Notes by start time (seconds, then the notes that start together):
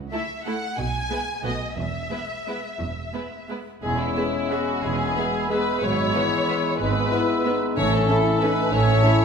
0.12 A3 E4 A4 E5
0.46 A3 E4 A4 F#5
0.78 B1 B2 G#5
1.10 G#3 B3 E4 B4
1.43 B1 B2 A3 B3 F#4 B4 D#5
1.77 E1 E2 E5
2.10 G#3 B3 E4 B4
2.47 G#3 B3 E4 B4
2.81 E1 E2
3.13 G#3 B3 E4 B4
3.49 G#3 B3 E4 B4
3.82 E1 E2 G#3 B3 C#4 G#4 E5 B5
3.99 E4
4.17 B3 G#4 E5
4.50 B3 F#4 G#4 E5
4.83 E1 E2 G#3 B3 G#4 E5 B5
5.16 B3 G#4 E5
5.49 G#3 B3 G#4 B4 E5 B5
5.81 G#1 G#2 F#3 G#3 B3 C#5 E5 B5
6.13 E3 B3 B4 E5
6.48 B3 B4 E5
6.79 G#1 G#2 G#3 B3 B4 E5 B5
7.11 B3 E4 B4 E5
7.45 B3 D#4 B4 E5
7.77 A1 A2 A3 C#4 C#5 E5 A5
7.92 A4
8.08 C#4 E4 A4 E5
8.41 C#4 D#4 A4 B4 E5
8.72 A1 A2 A3 C#4 C#5 E5 A5
9.04 C#4 E4 A4 E5